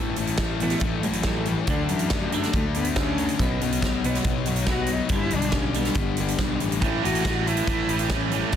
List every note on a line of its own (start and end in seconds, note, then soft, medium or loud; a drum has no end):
0.00 0.14 A1 medium
0.00 0.16 A2 medium
0.00 0.17 E3 medium
0.00 0.18 A3 medium
0.16 0.73 A1 medium
0.16 0.38 A2 medium
0.16 0.39 E3 medium
0.16 0.40 A3 medium
0.16 closed hi-hat medium
0.27 closed hi-hat medium
0.37 0.59 A2 medium
0.37 0.61 E3 medium
0.37 0.62 A3 medium
0.37 kick medium
0.37 snare loud
0.37 closed hi-hat medium
0.60 0.81 A2 medium
0.60 0.81 E3 medium
0.60 0.82 A3 medium
0.60 0.80 B3 medium
0.60 closed hi-hat medium
0.70 snare soft
0.70 closed hi-hat medium
0.80 1.56 A1 loud
0.80 1.02 A2 medium
0.80 1.03 E3 medium
0.80 1.04 A3 loud
0.80 kick loud
0.80 closed hi-hat medium
0.84 1.07 A3 medium
1.03 1.24 A2 medium
1.03 1.25 E3 medium
1.03 1.50 F#3 medium
1.03 1.25 A3 medium
1.03 closed hi-hat medium
1.13 closed hi-hat medium
1.23 1.46 A2 medium
1.23 1.46 E3 medium
1.23 1.46 A3 medium
1.23 kick medium
1.23 snare loud
1.23 closed hi-hat medium
1.45 1.67 A2 medium
1.45 1.67 E3 medium
1.45 1.69 E3 medium
1.45 1.67 A3 medium
1.45 closed hi-hat medium
1.67 1.86 D2 medium
1.67 1.89 D3 medium
1.67 1.92 D3 medium
1.67 1.89 A3 medium
1.67 1.90 D4 medium
1.67 kick loud
1.67 closed hi-hat medium
1.89 2.46 F#2 medium
1.89 2.11 D3 medium
1.89 2.13 E3 medium
1.89 2.11 A3 medium
1.89 2.12 D4 medium
1.89 closed hi-hat medium
1.99 closed hi-hat medium
2.10 2.31 D3 medium
2.10 2.54 F#3 medium
2.10 2.32 A3 medium
2.10 2.32 D4 medium
2.10 kick loud
2.10 snare loud
2.10 closed hi-hat medium
2.32 2.53 D3 medium
2.32 2.54 A3 medium
2.32 2.54 D4 medium
2.32 closed hi-hat medium
2.43 snare soft
2.43 closed hi-hat medium
2.53 3.28 D2 medium
2.53 2.75 D3 medium
2.53 2.64 A3 medium
2.53 2.76 A3 loud
2.53 2.77 D4 loud
2.53 kick loud
2.53 closed hi-hat medium
2.74 2.96 D3 medium
2.74 2.97 A3 medium
2.74 2.96 B3 loud
2.74 2.97 D4 medium
2.74 closed hi-hat medium
2.85 closed hi-hat medium
2.96 3.16 D3 medium
2.96 3.17 A3 medium
2.96 3.57 C#4 loud
2.96 3.18 D4 loud
2.96 kick loud
2.96 snare medium
2.96 closed hi-hat medium
3.18 3.38 D3 medium
3.18 3.39 A3 medium
3.18 3.39 D4 medium
3.18 closed hi-hat medium
3.29 closed hi-hat medium
3.39 3.58 B1 loud
3.39 3.59 B2 medium
3.39 3.60 F#3 medium
3.39 3.62 B3 medium
3.39 kick loud
3.39 closed hi-hat medium
3.61 4.17 B1 medium
3.61 3.81 B2 medium
3.61 3.81 F#3 medium
3.61 3.83 B3 medium
3.61 closed hi-hat medium
3.72 closed hi-hat medium
3.82 4.02 B2 medium
3.82 4.03 F#3 medium
3.82 4.04 B3 medium
3.82 kick loud
3.82 snare medium
3.82 closed hi-hat medium
4.03 4.23 B2 medium
4.03 4.23 F#3 medium
4.03 4.24 B3 medium
4.03 closed hi-hat medium
4.15 snare soft
4.15 closed hi-hat medium
4.24 5.00 B1 medium
4.24 4.44 B2 medium
4.24 4.46 F#3 loud
4.24 4.46 B3 loud
4.24 kick loud
4.24 closed hi-hat medium
4.46 4.65 B2 medium
4.46 4.66 F#3 medium
4.46 4.66 B3 medium
4.46 closed hi-hat medium
4.56 closed hi-hat medium
4.66 4.87 B2 medium
4.66 4.89 F#3 medium
4.66 4.89 B3 medium
4.66 4.94 F#4 medium
4.66 kick loud
4.66 snare medium
4.66 closed hi-hat medium
4.87 5.09 B2 medium
4.87 5.10 F#3 medium
4.87 5.10 B3 medium
4.87 closed hi-hat medium
4.92 5.13 D#4 medium
5.09 5.29 G1 medium
5.09 5.32 G2 medium
5.09 5.33 D3 loud
5.09 5.33 G3 loud
5.09 kick loud
5.09 closed hi-hat medium
5.13 5.36 E4 loud
5.30 5.89 B1 loud
5.30 5.53 G2 medium
5.30 5.54 D3 medium
5.30 5.54 G3 medium
5.30 closed hi-hat medium
5.35 5.59 D4 loud
5.42 closed hi-hat medium
5.52 5.74 G2 medium
5.52 5.75 D3 medium
5.52 5.76 G3 medium
5.52 kick loud
5.52 snare loud
5.52 closed hi-hat medium
5.57 5.76 C#4 medium
5.74 5.96 G2 medium
5.74 5.97 D3 medium
5.74 5.97 G3 medium
5.74 6.79 B3 medium
5.74 closed hi-hat medium
5.85 snare soft
5.85 closed hi-hat medium
5.94 6.33 G1 medium
5.94 6.19 G2 medium
5.94 6.19 D3 loud
5.94 6.19 G3 loud
5.94 kick loud
5.94 closed hi-hat medium
6.17 6.38 G2 medium
6.17 6.38 D3 medium
6.17 closed hi-hat medium
6.21 6.40 G3 medium
6.28 closed hi-hat medium
6.38 6.59 B1 medium
6.38 6.60 G2 medium
6.38 6.60 D3 medium
6.38 6.60 G3 medium
6.38 kick medium
6.38 snare medium
6.38 closed hi-hat medium
6.60 6.80 A1 medium
6.60 6.81 G2 medium
6.60 6.80 D3 medium
6.60 6.81 G3 medium
6.60 closed hi-hat medium
6.72 closed hi-hat medium
6.81 7.01 A1 medium
6.81 7.02 A2 medium
6.81 7.02 E3 medium
6.81 7.04 A3 medium
6.81 kick loud
6.81 closed hi-hat medium
7.03 7.60 A1 loud
7.03 7.22 A2 medium
7.03 7.24 E3 medium
7.03 7.25 A3 medium
7.03 7.48 F#4 loud
7.03 closed hi-hat medium
7.15 closed hi-hat medium
7.24 7.44 A2 medium
7.24 7.45 E3 medium
7.24 7.47 A3 medium
7.24 kick loud
7.24 snare loud
7.24 closed hi-hat medium
7.46 7.66 A2 medium
7.46 7.66 E3 medium
7.46 7.66 A3 medium
7.46 8.11 E4 loud
7.46 closed hi-hat medium
7.57 closed hi-hat medium
7.67 8.42 A1 medium
7.67 7.88 A2 medium
7.67 7.89 E3 medium
7.67 7.89 A3 loud
7.67 kick loud
7.67 closed hi-hat medium
7.89 8.09 A2 medium
7.89 8.09 E3 medium
7.89 8.11 A3 medium
7.89 closed hi-hat medium
7.99 closed hi-hat medium
8.09 8.31 A2 medium
8.09 8.32 E3 medium
8.09 8.32 A3 medium
8.09 8.52 C#4 medium
8.09 kick loud
8.09 snare loud
8.09 closed hi-hat medium
8.31 8.53 A2 medium
8.31 8.53 E3 medium
8.31 8.53 A3 medium
8.31 closed hi-hat medium
8.52 8.56 D2 medium
8.52 8.56 D3 medium
8.52 8.56 A3 medium
8.52 kick loud
8.52 closed hi-hat medium